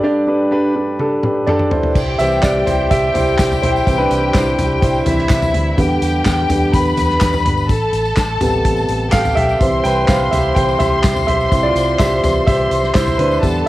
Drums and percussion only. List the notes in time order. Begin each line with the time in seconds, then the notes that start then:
0.99 high tom
1.23 mid tom
1.47 mid tom
1.59 mid tom
1.71 floor tom
1.83 floor tom
1.95 kick, crash, tambourine
2.19 closed hi-hat, tambourine
2.32 tambourine
2.43 kick, snare, clap, closed hi-hat, tambourine
2.67 closed hi-hat, floor tom, tambourine
2.91 kick, closed hi-hat, tambourine
3.15 closed hi-hat, floor tom, tambourine
3.28 tambourine
3.38 kick, snare, clap, closed hi-hat, tambourine
3.51 floor tom, tambourine
3.63 closed hi-hat, floor tom
3.76 tambourine
3.87 kick, closed hi-hat, tambourine
4.11 closed hi-hat, tambourine
4.34 kick, snare, clap, closed hi-hat, tambourine
4.58 closed hi-hat, floor tom, tambourine
4.82 kick, closed hi-hat, tambourine
4.94 tambourine
5.06 closed hi-hat, floor tom, tambourine
5.18 snare
5.29 kick, snare, clap, closed hi-hat, tambourine
5.42 floor tom, tambourine
5.54 closed hi-hat, floor tom
5.78 kick, closed hi-hat, tambourine
6.02 closed hi-hat, tambourine
6.25 kick, snare, clap, closed hi-hat, tambourine
6.50 closed hi-hat, floor tom, tambourine
6.73 kick, closed hi-hat, tambourine
6.85 tambourine
6.97 closed hi-hat, floor tom, tambourine
7.10 snare
7.21 kick, snare, clap, closed hi-hat, tambourine
7.33 floor tom, tambourine
7.45 closed hi-hat, floor tom
7.57 tambourine
7.69 kick, closed hi-hat, tambourine
7.93 closed hi-hat, tambourine
8.05 tambourine
8.17 kick, snare, clap, closed hi-hat, tambourine
8.41 closed hi-hat, floor tom, tambourine
8.65 kick, closed hi-hat, tambourine
8.77 tambourine
8.89 closed hi-hat, tambourine
9.12 kick, snare, clap, closed hi-hat, tambourine
9.25 floor tom, tambourine
9.37 closed hi-hat, floor tom
9.49 tambourine
9.61 kick, closed hi-hat, tambourine
9.85 closed hi-hat, tambourine
10.08 kick, snare, clap, closed hi-hat, tambourine
10.32 closed hi-hat, floor tom, tambourine
10.56 kick, closed hi-hat, tambourine
10.69 tambourine
10.80 closed hi-hat, floor tom, tambourine
11.03 kick, snare, clap, closed hi-hat, tambourine
11.16 floor tom, tambourine
11.28 closed hi-hat, floor tom
11.40 tambourine
11.52 kick, closed hi-hat, tambourine
11.76 closed hi-hat, tambourine
11.99 kick, snare, clap, closed hi-hat, tambourine
12.24 closed hi-hat, floor tom, tambourine
12.47 kick, closed hi-hat, tambourine
12.71 closed hi-hat, tambourine
12.83 snare
12.94 kick, snare, clap, closed hi-hat, tambourine
13.07 floor tom, tambourine
13.19 closed hi-hat, floor tom
13.31 tambourine
13.43 kick, closed hi-hat, tambourine